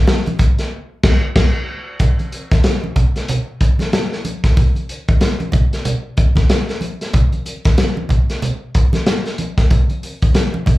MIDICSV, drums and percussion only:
0, 0, Header, 1, 2, 480
1, 0, Start_track
1, 0, Tempo, 642398
1, 1495, Time_signature, 4, 2, 24, 8
1, 8055, End_track
2, 0, Start_track
2, 0, Title_t, "Drums"
2, 55, Note_on_c, 9, 63, 73
2, 57, Note_on_c, 9, 38, 108
2, 130, Note_off_c, 9, 63, 0
2, 132, Note_off_c, 9, 38, 0
2, 195, Note_on_c, 9, 42, 37
2, 204, Note_on_c, 9, 63, 80
2, 270, Note_off_c, 9, 42, 0
2, 279, Note_off_c, 9, 63, 0
2, 290, Note_on_c, 9, 62, 34
2, 293, Note_on_c, 9, 42, 73
2, 294, Note_on_c, 9, 36, 93
2, 365, Note_off_c, 9, 62, 0
2, 368, Note_off_c, 9, 42, 0
2, 369, Note_off_c, 9, 36, 0
2, 437, Note_on_c, 9, 42, 50
2, 438, Note_on_c, 9, 38, 37
2, 512, Note_off_c, 9, 42, 0
2, 513, Note_off_c, 9, 38, 0
2, 772, Note_on_c, 9, 49, 78
2, 774, Note_on_c, 9, 36, 108
2, 774, Note_on_c, 9, 38, 101
2, 846, Note_off_c, 9, 49, 0
2, 849, Note_off_c, 9, 36, 0
2, 849, Note_off_c, 9, 38, 0
2, 1013, Note_on_c, 9, 49, 86
2, 1014, Note_on_c, 9, 36, 113
2, 1015, Note_on_c, 9, 38, 111
2, 1088, Note_off_c, 9, 49, 0
2, 1089, Note_off_c, 9, 36, 0
2, 1090, Note_off_c, 9, 38, 0
2, 1491, Note_on_c, 9, 42, 69
2, 1494, Note_on_c, 9, 36, 91
2, 1499, Note_on_c, 9, 62, 30
2, 1499, Note_on_c, 9, 64, 66
2, 1565, Note_off_c, 9, 42, 0
2, 1569, Note_off_c, 9, 36, 0
2, 1574, Note_off_c, 9, 62, 0
2, 1574, Note_off_c, 9, 64, 0
2, 1637, Note_on_c, 9, 42, 29
2, 1642, Note_on_c, 9, 63, 46
2, 1712, Note_off_c, 9, 42, 0
2, 1717, Note_off_c, 9, 63, 0
2, 1736, Note_on_c, 9, 42, 61
2, 1811, Note_off_c, 9, 42, 0
2, 1878, Note_on_c, 9, 42, 49
2, 1880, Note_on_c, 9, 36, 97
2, 1882, Note_on_c, 9, 38, 33
2, 1953, Note_off_c, 9, 42, 0
2, 1954, Note_off_c, 9, 36, 0
2, 1957, Note_off_c, 9, 38, 0
2, 1970, Note_on_c, 9, 42, 88
2, 1973, Note_on_c, 9, 38, 103
2, 1976, Note_on_c, 9, 63, 66
2, 2045, Note_off_c, 9, 42, 0
2, 2048, Note_off_c, 9, 38, 0
2, 2050, Note_off_c, 9, 63, 0
2, 2120, Note_on_c, 9, 63, 67
2, 2195, Note_off_c, 9, 63, 0
2, 2211, Note_on_c, 9, 42, 57
2, 2211, Note_on_c, 9, 62, 31
2, 2211, Note_on_c, 9, 64, 73
2, 2213, Note_on_c, 9, 36, 74
2, 2285, Note_off_c, 9, 42, 0
2, 2286, Note_off_c, 9, 62, 0
2, 2286, Note_off_c, 9, 64, 0
2, 2288, Note_off_c, 9, 36, 0
2, 2359, Note_on_c, 9, 42, 47
2, 2361, Note_on_c, 9, 38, 36
2, 2434, Note_off_c, 9, 42, 0
2, 2436, Note_off_c, 9, 38, 0
2, 2454, Note_on_c, 9, 42, 97
2, 2461, Note_on_c, 9, 64, 75
2, 2529, Note_off_c, 9, 42, 0
2, 2536, Note_off_c, 9, 64, 0
2, 2694, Note_on_c, 9, 42, 81
2, 2696, Note_on_c, 9, 36, 75
2, 2698, Note_on_c, 9, 62, 34
2, 2769, Note_off_c, 9, 42, 0
2, 2770, Note_off_c, 9, 36, 0
2, 2773, Note_off_c, 9, 62, 0
2, 2833, Note_on_c, 9, 63, 75
2, 2840, Note_on_c, 9, 42, 49
2, 2842, Note_on_c, 9, 38, 33
2, 2908, Note_off_c, 9, 63, 0
2, 2914, Note_off_c, 9, 42, 0
2, 2917, Note_off_c, 9, 38, 0
2, 2934, Note_on_c, 9, 62, 33
2, 2937, Note_on_c, 9, 42, 91
2, 2939, Note_on_c, 9, 38, 98
2, 3008, Note_off_c, 9, 62, 0
2, 3011, Note_off_c, 9, 42, 0
2, 3013, Note_off_c, 9, 38, 0
2, 3080, Note_on_c, 9, 38, 33
2, 3155, Note_off_c, 9, 38, 0
2, 3174, Note_on_c, 9, 42, 67
2, 3174, Note_on_c, 9, 63, 68
2, 3249, Note_off_c, 9, 42, 0
2, 3249, Note_off_c, 9, 63, 0
2, 3316, Note_on_c, 9, 36, 77
2, 3318, Note_on_c, 9, 42, 49
2, 3320, Note_on_c, 9, 38, 30
2, 3391, Note_off_c, 9, 36, 0
2, 3393, Note_off_c, 9, 42, 0
2, 3394, Note_off_c, 9, 38, 0
2, 3415, Note_on_c, 9, 64, 73
2, 3416, Note_on_c, 9, 36, 97
2, 3416, Note_on_c, 9, 42, 75
2, 3489, Note_off_c, 9, 64, 0
2, 3491, Note_off_c, 9, 36, 0
2, 3491, Note_off_c, 9, 42, 0
2, 3553, Note_on_c, 9, 63, 41
2, 3558, Note_on_c, 9, 42, 30
2, 3627, Note_off_c, 9, 63, 0
2, 3632, Note_off_c, 9, 42, 0
2, 3656, Note_on_c, 9, 42, 68
2, 3730, Note_off_c, 9, 42, 0
2, 3797, Note_on_c, 9, 42, 43
2, 3800, Note_on_c, 9, 36, 93
2, 3872, Note_off_c, 9, 42, 0
2, 3875, Note_off_c, 9, 36, 0
2, 3890, Note_on_c, 9, 62, 33
2, 3890, Note_on_c, 9, 63, 64
2, 3891, Note_on_c, 9, 42, 91
2, 3894, Note_on_c, 9, 38, 89
2, 3965, Note_off_c, 9, 62, 0
2, 3965, Note_off_c, 9, 63, 0
2, 3966, Note_off_c, 9, 42, 0
2, 3969, Note_off_c, 9, 38, 0
2, 4036, Note_on_c, 9, 63, 67
2, 4037, Note_on_c, 9, 42, 31
2, 4110, Note_off_c, 9, 63, 0
2, 4112, Note_off_c, 9, 42, 0
2, 4125, Note_on_c, 9, 64, 73
2, 4135, Note_on_c, 9, 36, 81
2, 4135, Note_on_c, 9, 42, 61
2, 4200, Note_off_c, 9, 64, 0
2, 4209, Note_off_c, 9, 36, 0
2, 4210, Note_off_c, 9, 42, 0
2, 4280, Note_on_c, 9, 42, 48
2, 4282, Note_on_c, 9, 38, 32
2, 4355, Note_off_c, 9, 42, 0
2, 4357, Note_off_c, 9, 38, 0
2, 4372, Note_on_c, 9, 42, 89
2, 4375, Note_on_c, 9, 62, 33
2, 4375, Note_on_c, 9, 64, 79
2, 4447, Note_off_c, 9, 42, 0
2, 4450, Note_off_c, 9, 62, 0
2, 4450, Note_off_c, 9, 64, 0
2, 4609, Note_on_c, 9, 62, 29
2, 4612, Note_on_c, 9, 42, 74
2, 4615, Note_on_c, 9, 36, 86
2, 4684, Note_off_c, 9, 62, 0
2, 4687, Note_off_c, 9, 42, 0
2, 4690, Note_off_c, 9, 36, 0
2, 4748, Note_on_c, 9, 63, 74
2, 4755, Note_on_c, 9, 42, 47
2, 4758, Note_on_c, 9, 36, 95
2, 4758, Note_on_c, 9, 38, 34
2, 4823, Note_off_c, 9, 63, 0
2, 4830, Note_off_c, 9, 42, 0
2, 4832, Note_off_c, 9, 36, 0
2, 4833, Note_off_c, 9, 38, 0
2, 4852, Note_on_c, 9, 62, 30
2, 4854, Note_on_c, 9, 42, 91
2, 4856, Note_on_c, 9, 38, 101
2, 4926, Note_off_c, 9, 62, 0
2, 4928, Note_off_c, 9, 42, 0
2, 4930, Note_off_c, 9, 38, 0
2, 4998, Note_on_c, 9, 42, 32
2, 5001, Note_on_c, 9, 38, 35
2, 5073, Note_off_c, 9, 42, 0
2, 5076, Note_off_c, 9, 38, 0
2, 5087, Note_on_c, 9, 63, 65
2, 5093, Note_on_c, 9, 42, 71
2, 5162, Note_off_c, 9, 63, 0
2, 5168, Note_off_c, 9, 42, 0
2, 5239, Note_on_c, 9, 42, 46
2, 5240, Note_on_c, 9, 38, 31
2, 5314, Note_off_c, 9, 42, 0
2, 5315, Note_off_c, 9, 38, 0
2, 5331, Note_on_c, 9, 42, 73
2, 5331, Note_on_c, 9, 62, 29
2, 5331, Note_on_c, 9, 64, 73
2, 5335, Note_on_c, 9, 36, 89
2, 5406, Note_off_c, 9, 42, 0
2, 5406, Note_off_c, 9, 62, 0
2, 5406, Note_off_c, 9, 64, 0
2, 5410, Note_off_c, 9, 36, 0
2, 5472, Note_on_c, 9, 42, 32
2, 5478, Note_on_c, 9, 63, 45
2, 5547, Note_off_c, 9, 42, 0
2, 5553, Note_off_c, 9, 63, 0
2, 5571, Note_on_c, 9, 62, 32
2, 5574, Note_on_c, 9, 42, 67
2, 5646, Note_off_c, 9, 62, 0
2, 5649, Note_off_c, 9, 42, 0
2, 5713, Note_on_c, 9, 42, 50
2, 5718, Note_on_c, 9, 38, 37
2, 5719, Note_on_c, 9, 36, 96
2, 5788, Note_off_c, 9, 42, 0
2, 5792, Note_off_c, 9, 38, 0
2, 5794, Note_off_c, 9, 36, 0
2, 5811, Note_on_c, 9, 42, 86
2, 5812, Note_on_c, 9, 62, 34
2, 5812, Note_on_c, 9, 63, 71
2, 5814, Note_on_c, 9, 38, 106
2, 5885, Note_off_c, 9, 42, 0
2, 5886, Note_off_c, 9, 62, 0
2, 5886, Note_off_c, 9, 63, 0
2, 5888, Note_off_c, 9, 38, 0
2, 5956, Note_on_c, 9, 63, 74
2, 6031, Note_off_c, 9, 63, 0
2, 6045, Note_on_c, 9, 62, 35
2, 6045, Note_on_c, 9, 64, 65
2, 6054, Note_on_c, 9, 42, 61
2, 6055, Note_on_c, 9, 36, 79
2, 6120, Note_off_c, 9, 62, 0
2, 6120, Note_off_c, 9, 64, 0
2, 6129, Note_off_c, 9, 42, 0
2, 6130, Note_off_c, 9, 36, 0
2, 6199, Note_on_c, 9, 42, 49
2, 6200, Note_on_c, 9, 38, 33
2, 6273, Note_off_c, 9, 42, 0
2, 6275, Note_off_c, 9, 38, 0
2, 6294, Note_on_c, 9, 64, 72
2, 6295, Note_on_c, 9, 42, 84
2, 6368, Note_off_c, 9, 64, 0
2, 6369, Note_off_c, 9, 42, 0
2, 6534, Note_on_c, 9, 42, 77
2, 6536, Note_on_c, 9, 62, 30
2, 6538, Note_on_c, 9, 36, 80
2, 6609, Note_off_c, 9, 42, 0
2, 6611, Note_off_c, 9, 62, 0
2, 6612, Note_off_c, 9, 36, 0
2, 6672, Note_on_c, 9, 63, 79
2, 6678, Note_on_c, 9, 42, 47
2, 6680, Note_on_c, 9, 38, 33
2, 6747, Note_off_c, 9, 63, 0
2, 6752, Note_off_c, 9, 42, 0
2, 6755, Note_off_c, 9, 38, 0
2, 6772, Note_on_c, 9, 42, 78
2, 6774, Note_on_c, 9, 38, 97
2, 6847, Note_off_c, 9, 42, 0
2, 6849, Note_off_c, 9, 38, 0
2, 6916, Note_on_c, 9, 42, 35
2, 6919, Note_on_c, 9, 38, 33
2, 6991, Note_off_c, 9, 42, 0
2, 6994, Note_off_c, 9, 38, 0
2, 7010, Note_on_c, 9, 42, 78
2, 7015, Note_on_c, 9, 63, 65
2, 7085, Note_off_c, 9, 42, 0
2, 7090, Note_off_c, 9, 63, 0
2, 7154, Note_on_c, 9, 42, 43
2, 7155, Note_on_c, 9, 38, 34
2, 7156, Note_on_c, 9, 36, 80
2, 7229, Note_off_c, 9, 42, 0
2, 7230, Note_off_c, 9, 36, 0
2, 7230, Note_off_c, 9, 38, 0
2, 7251, Note_on_c, 9, 42, 73
2, 7254, Note_on_c, 9, 64, 65
2, 7255, Note_on_c, 9, 36, 92
2, 7325, Note_off_c, 9, 42, 0
2, 7329, Note_off_c, 9, 64, 0
2, 7330, Note_off_c, 9, 36, 0
2, 7393, Note_on_c, 9, 42, 30
2, 7398, Note_on_c, 9, 63, 43
2, 7468, Note_off_c, 9, 42, 0
2, 7473, Note_off_c, 9, 63, 0
2, 7495, Note_on_c, 9, 42, 66
2, 7570, Note_off_c, 9, 42, 0
2, 7636, Note_on_c, 9, 42, 51
2, 7640, Note_on_c, 9, 36, 89
2, 7710, Note_off_c, 9, 42, 0
2, 7715, Note_off_c, 9, 36, 0
2, 7728, Note_on_c, 9, 63, 70
2, 7731, Note_on_c, 9, 42, 89
2, 7734, Note_on_c, 9, 38, 106
2, 7803, Note_off_c, 9, 63, 0
2, 7805, Note_off_c, 9, 42, 0
2, 7808, Note_off_c, 9, 38, 0
2, 7875, Note_on_c, 9, 63, 73
2, 7950, Note_off_c, 9, 63, 0
2, 7966, Note_on_c, 9, 62, 30
2, 7966, Note_on_c, 9, 64, 69
2, 7972, Note_on_c, 9, 42, 65
2, 7974, Note_on_c, 9, 36, 90
2, 8041, Note_off_c, 9, 62, 0
2, 8041, Note_off_c, 9, 64, 0
2, 8047, Note_off_c, 9, 42, 0
2, 8049, Note_off_c, 9, 36, 0
2, 8055, End_track
0, 0, End_of_file